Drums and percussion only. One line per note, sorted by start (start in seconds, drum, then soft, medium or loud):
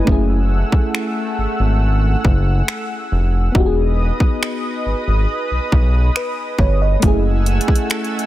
0.07 kick loud
0.72 kick medium
0.95 finger snap loud
2.25 kick medium
2.68 finger snap loud
3.55 kick loud
4.20 kick medium
4.43 finger snap loud
5.72 kick medium
6.16 finger snap loud
6.59 kick medium
7.02 kick loud
7.02 closed hi-hat medium
7.46 closed hi-hat medium
7.61 closed hi-hat medium
7.68 kick medium
7.76 closed hi-hat medium
7.90 finger snap loud
7.90 closed hi-hat soft
8.04 closed hi-hat soft
8.19 closed hi-hat soft